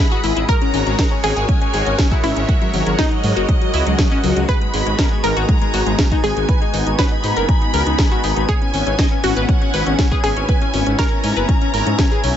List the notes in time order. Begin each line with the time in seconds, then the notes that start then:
Already playing: G#3 E4 G#4 B4 D#5 F#5 B5 D#6
0.11 F#4, closed hi-hat
0.24 G#1 E4, open hi-hat
0.36 G#1 E4, closed hi-hat
0.49 F#4 A#4 C#5 A#5, kick, closed hi-hat
0.62 C#4, closed hi-hat
0.74 G#1 C#4, open hi-hat
0.87 G#1 C#4, closed hi-hat
0.99 A#4, kick, snare, closed hi-hat
1.11 C#4
1.24 G#1 C#4 G#4 G#5, open hi-hat
1.36 G#1 G#4, closed hi-hat
1.49 C#4, kick, closed hi-hat
1.61 C#4, closed hi-hat
1.74 G#1 G#4, open hi-hat
1.86 G#1 C#4, closed hi-hat
1.99 C#4, kick, snare, closed hi-hat
2.11 E4, kick, closed hi-hat
2.24 G#1 C#4 E4 E5, open hi-hat
2.36 G#1 C#4, closed hi-hat
2.49 F#4, kick, closed hi-hat
2.62 F#3, closed hi-hat
2.74 G#1 F#3, open hi-hat
2.87 G#1 F#3, closed hi-hat
2.99 D#4 G#4 D#5, kick, snare, closed hi-hat
3.11 F#3, closed hi-hat
3.24 G#2 F#3, open hi-hat
3.37 F#1 F#4, closed hi-hat
3.49 F#3, kick, closed hi-hat
3.62 F#3, closed hi-hat
3.74 C#2 E4, open hi-hat
3.87 C#2 F#3, closed hi-hat
3.99 F#3, kick, snare, closed hi-hat
4.11 C#4, closed hi-hat
4.24 C#2 F#3, open hi-hat
4.36 C#2 F#3, closed hi-hat
4.49 B3 D#4 G#4 B4 G#5 B5 G#6, kick, closed hi-hat
4.61 G#3, closed hi-hat
4.74 G#1 G#3, open hi-hat
4.87 G#1 G#3, closed hi-hat
4.99 A#4, kick, snare, closed hi-hat
5.12 G#3
5.24 G#1 G#3 A#4 A#5, open hi-hat
5.37 G#1 F#4, closed hi-hat
5.49 G#3, kick, closed hi-hat
5.62 G#3, closed hi-hat
5.74 G#1 F#4, open hi-hat
5.87 G#1 G#3, closed hi-hat
5.99 G#3, kick, snare, closed hi-hat
6.12 D#4, kick, closed hi-hat
6.24 G#1 G#3 G#4 G#5, open hi-hat
6.37 G#1 G#3, closed hi-hat
6.49 B4, kick, closed hi-hat
6.62 D#4, closed hi-hat
6.74 G#1 D#4, open hi-hat
6.87 G#1 D#4, closed hi-hat
6.99 B4 C#5 B5, kick, snare, closed hi-hat
7.12 D#4
7.24 G#2 D#4, open hi-hat
7.37 F#1 A#4, closed hi-hat
7.49 D#4, kick, closed hi-hat
7.62 D#4, closed hi-hat
7.74 C#2 A#4, open hi-hat
7.87 C#2 D#4, closed hi-hat
7.99 D#4, kick, snare, closed hi-hat
8.12 F#4, closed hi-hat
8.24 G#1 D#4, open hi-hat
8.37 G#1 D#4, closed hi-hat
8.49 C#4 E4 G#4 C#5 G#5, kick, closed hi-hat
8.62 C#4, closed hi-hat
8.74 G#1 C#4, open hi-hat
8.87 G#1 C#4, closed hi-hat
8.99 D#5, kick, snare, closed hi-hat
9.12 C#4
9.24 G#1 C#4 F#4 F#5, open hi-hat
9.37 G#1 B4, closed hi-hat
9.49 C#4, kick, closed hi-hat
9.62 C#4, closed hi-hat
9.74 G#1 B4, open hi-hat
9.87 G#1 C#4, closed hi-hat
9.99 C#4, kick, snare, closed hi-hat
10.12 G#4, kick, closed hi-hat
10.24 G#1 C#4 G#4 G#5, open hi-hat
10.37 G#1 C#4, closed hi-hat
10.49 B4, kick, closed hi-hat
10.62 C#4, closed hi-hat
10.74 G#1 C#4, open hi-hat
10.86 G#1 C#4, closed hi-hat
10.99 A#4 C#5 A#5, kick, snare, closed hi-hat
11.12 C#4
11.24 G#2 C#4, open hi-hat
11.37 F#1 B4, closed hi-hat
11.49 C#4, kick, closed hi-hat
11.62 C#4, closed hi-hat
11.74 G#1 A#4, open hi-hat
11.86 G#2 C#4, closed hi-hat
11.99 C#4, kick, snare, closed hi-hat
12.12 G#4, closed hi-hat
12.24 B1 C#4, open hi-hat